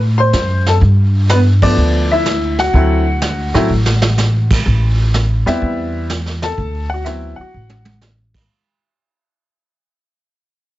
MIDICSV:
0, 0, Header, 1, 5, 480
1, 0, Start_track
1, 0, Tempo, 480000
1, 814, Time_signature, 4, 2, 24, 8
1, 10786, End_track
2, 0, Start_track
2, 0, Title_t, "Grand piano"
2, 0, Program_c, 0, 0
2, 179, Note_on_c, 0, 84, 94
2, 201, Note_on_c, 0, 72, 68
2, 627, Note_off_c, 0, 84, 0
2, 638, Note_off_c, 0, 72, 0
2, 683, Note_on_c, 0, 81, 66
2, 694, Note_on_c, 0, 69, 56
2, 733, Note_off_c, 0, 81, 0
2, 744, Note_off_c, 0, 69, 0
2, 1302, Note_on_c, 0, 71, 75
2, 1327, Note_on_c, 0, 59, 63
2, 1374, Note_off_c, 0, 71, 0
2, 1397, Note_off_c, 0, 59, 0
2, 1623, Note_on_c, 0, 53, 61
2, 1624, Note_on_c, 0, 74, 88
2, 1627, Note_on_c, 0, 59, 61
2, 1628, Note_on_c, 0, 57, 55
2, 1631, Note_on_c, 0, 62, 70
2, 2115, Note_on_c, 0, 76, 93
2, 2117, Note_off_c, 0, 74, 0
2, 2130, Note_on_c, 0, 64, 59
2, 2224, Note_off_c, 0, 53, 0
2, 2226, Note_off_c, 0, 57, 0
2, 2226, Note_off_c, 0, 59, 0
2, 2228, Note_off_c, 0, 62, 0
2, 2563, Note_off_c, 0, 64, 0
2, 2595, Note_on_c, 0, 78, 90
2, 2602, Note_off_c, 0, 76, 0
2, 2605, Note_on_c, 0, 66, 69
2, 2744, Note_on_c, 0, 54, 66
2, 2749, Note_on_c, 0, 57, 56
2, 2751, Note_on_c, 0, 64, 70
2, 2753, Note_on_c, 0, 60, 60
2, 3034, Note_off_c, 0, 54, 0
2, 3036, Note_off_c, 0, 57, 0
2, 3037, Note_off_c, 0, 64, 0
2, 3038, Note_off_c, 0, 60, 0
2, 3543, Note_on_c, 0, 54, 70
2, 3544, Note_on_c, 0, 57, 63
2, 3546, Note_on_c, 0, 60, 63
2, 3552, Note_on_c, 0, 64, 76
2, 3679, Note_off_c, 0, 54, 0
2, 3679, Note_off_c, 0, 57, 0
2, 3680, Note_off_c, 0, 60, 0
2, 3683, Note_off_c, 0, 64, 0
2, 4468, Note_off_c, 0, 78, 0
2, 4473, Note_off_c, 0, 66, 0
2, 5461, Note_on_c, 0, 55, 61
2, 5462, Note_on_c, 0, 59, 57
2, 5468, Note_on_c, 0, 60, 50
2, 5469, Note_on_c, 0, 64, 66
2, 5475, Note_on_c, 0, 76, 96
2, 6060, Note_off_c, 0, 76, 0
2, 6063, Note_off_c, 0, 55, 0
2, 6064, Note_off_c, 0, 59, 0
2, 6066, Note_off_c, 0, 60, 0
2, 6067, Note_off_c, 0, 64, 0
2, 6435, Note_on_c, 0, 81, 97
2, 6455, Note_on_c, 0, 69, 72
2, 6886, Note_off_c, 0, 69, 0
2, 6896, Note_on_c, 0, 78, 81
2, 6923, Note_off_c, 0, 81, 0
2, 6938, Note_on_c, 0, 66, 66
2, 7040, Note_off_c, 0, 78, 0
2, 7045, Note_on_c, 0, 76, 76
2, 7055, Note_on_c, 0, 54, 65
2, 7056, Note_on_c, 0, 59, 55
2, 7056, Note_on_c, 0, 60, 59
2, 7062, Note_off_c, 0, 66, 0
2, 7064, Note_on_c, 0, 64, 74
2, 7350, Note_off_c, 0, 54, 0
2, 7350, Note_off_c, 0, 59, 0
2, 7351, Note_off_c, 0, 60, 0
2, 7354, Note_off_c, 0, 64, 0
2, 7354, Note_off_c, 0, 76, 0
2, 7362, Note_on_c, 0, 78, 77
2, 7408, Note_on_c, 0, 66, 55
2, 7964, Note_off_c, 0, 78, 0
2, 7988, Note_off_c, 0, 66, 0
2, 10786, End_track
3, 0, Start_track
3, 0, Title_t, "Upright bass"
3, 0, Program_c, 1, 32
3, 0, Note_on_c, 1, 45, 77
3, 297, Note_off_c, 1, 45, 0
3, 330, Note_on_c, 1, 42, 75
3, 778, Note_off_c, 1, 42, 0
3, 813, Note_on_c, 1, 43, 91
3, 1733, Note_off_c, 1, 43, 0
3, 1766, Note_on_c, 1, 38, 82
3, 2690, Note_off_c, 1, 38, 0
3, 2733, Note_on_c, 1, 38, 89
3, 3501, Note_off_c, 1, 38, 0
3, 3542, Note_on_c, 1, 45, 62
3, 3683, Note_off_c, 1, 45, 0
3, 3694, Note_on_c, 1, 33, 77
3, 4614, Note_off_c, 1, 33, 0
3, 4658, Note_on_c, 1, 33, 86
3, 5424, Note_off_c, 1, 33, 0
3, 5461, Note_on_c, 1, 40, 62
3, 5603, Note_off_c, 1, 40, 0
3, 5618, Note_on_c, 1, 40, 72
3, 6536, Note_off_c, 1, 40, 0
3, 6576, Note_on_c, 1, 38, 87
3, 7344, Note_off_c, 1, 38, 0
3, 7540, Note_on_c, 1, 33, 75
3, 8458, Note_off_c, 1, 33, 0
3, 10786, End_track
4, 0, Start_track
4, 0, Title_t, "Muted upright bass strokes"
4, 7386, Note_on_c, 9, 29, 36
4, 7486, Note_off_c, 9, 29, 0
4, 10786, End_track
5, 0, Start_track
5, 0, Title_t, "Drums"
5, 332, Note_on_c, 9, 38, 58
5, 332, Note_on_c, 9, 44, 45
5, 432, Note_off_c, 9, 38, 0
5, 432, Note_off_c, 9, 44, 0
5, 663, Note_on_c, 9, 38, 41
5, 763, Note_off_c, 9, 38, 0
5, 812, Note_on_c, 9, 25, 45
5, 812, Note_on_c, 9, 36, 29
5, 912, Note_off_c, 9, 36, 0
5, 1295, Note_on_c, 9, 38, 55
5, 1295, Note_on_c, 9, 44, 62
5, 1395, Note_off_c, 9, 38, 0
5, 1395, Note_off_c, 9, 44, 0
5, 1622, Note_on_c, 9, 36, 75
5, 1624, Note_on_c, 9, 51, 72
5, 1722, Note_off_c, 9, 36, 0
5, 1724, Note_off_c, 9, 51, 0
5, 1776, Note_off_c, 9, 25, 0
5, 1776, Note_on_c, 9, 25, 40
5, 2256, Note_on_c, 9, 38, 55
5, 2256, Note_on_c, 9, 44, 53
5, 2356, Note_off_c, 9, 38, 0
5, 2356, Note_off_c, 9, 44, 0
5, 2584, Note_on_c, 9, 38, 38
5, 2684, Note_off_c, 9, 38, 0
5, 2737, Note_on_c, 9, 36, 30
5, 2741, Note_off_c, 9, 25, 0
5, 2741, Note_on_c, 9, 25, 45
5, 2837, Note_off_c, 9, 36, 0
5, 3216, Note_on_c, 9, 38, 56
5, 3216, Note_on_c, 9, 44, 53
5, 3316, Note_off_c, 9, 38, 0
5, 3316, Note_off_c, 9, 44, 0
5, 3546, Note_on_c, 9, 38, 39
5, 3646, Note_off_c, 9, 38, 0
5, 3857, Note_on_c, 9, 38, 59
5, 3957, Note_off_c, 9, 38, 0
5, 4018, Note_on_c, 9, 38, 83
5, 4118, Note_off_c, 9, 38, 0
5, 4178, Note_on_c, 9, 38, 45
5, 4178, Note_on_c, 9, 44, 56
5, 4278, Note_off_c, 9, 38, 0
5, 4278, Note_off_c, 9, 44, 0
5, 4504, Note_on_c, 9, 49, 73
5, 4506, Note_on_c, 9, 36, 74
5, 4604, Note_off_c, 9, 49, 0
5, 4606, Note_off_c, 9, 36, 0
5, 4659, Note_off_c, 9, 25, 0
5, 4659, Note_on_c, 9, 25, 42
5, 4659, Note_on_c, 9, 36, 28
5, 4759, Note_off_c, 9, 36, 0
5, 5141, Note_on_c, 9, 38, 57
5, 5141, Note_on_c, 9, 44, 54
5, 5241, Note_off_c, 9, 38, 0
5, 5241, Note_off_c, 9, 44, 0
5, 5468, Note_on_c, 9, 38, 36
5, 5568, Note_off_c, 9, 38, 0
5, 5619, Note_on_c, 9, 36, 27
5, 5620, Note_off_c, 9, 25, 0
5, 5620, Note_on_c, 9, 25, 38
5, 5719, Note_off_c, 9, 36, 0
5, 6097, Note_on_c, 9, 38, 53
5, 6097, Note_on_c, 9, 44, 56
5, 6197, Note_off_c, 9, 38, 0
5, 6197, Note_off_c, 9, 44, 0
5, 6260, Note_on_c, 9, 38, 24
5, 6360, Note_off_c, 9, 38, 0
5, 6422, Note_on_c, 9, 38, 44
5, 6429, Note_off_c, 9, 38, 0
5, 6429, Note_on_c, 9, 38, 37
5, 6529, Note_off_c, 9, 38, 0
5, 6577, Note_on_c, 9, 36, 28
5, 6580, Note_off_c, 9, 25, 0
5, 6580, Note_on_c, 9, 25, 46
5, 6677, Note_off_c, 9, 36, 0
5, 7056, Note_on_c, 9, 38, 53
5, 7056, Note_on_c, 9, 44, 52
5, 7156, Note_off_c, 9, 38, 0
5, 7156, Note_off_c, 9, 44, 0
5, 7694, Note_on_c, 9, 48, 56
5, 7794, Note_off_c, 9, 48, 0
5, 7852, Note_on_c, 9, 48, 73
5, 7926, Note_off_c, 9, 25, 0
5, 7952, Note_off_c, 9, 48, 0
5, 8014, Note_on_c, 9, 38, 48
5, 8014, Note_on_c, 9, 44, 45
5, 8114, Note_off_c, 9, 38, 0
5, 8114, Note_off_c, 9, 44, 0
5, 8344, Note_on_c, 9, 36, 65
5, 8345, Note_on_c, 9, 49, 70
5, 8444, Note_off_c, 9, 36, 0
5, 8445, Note_off_c, 9, 49, 0
5, 10786, End_track
0, 0, End_of_file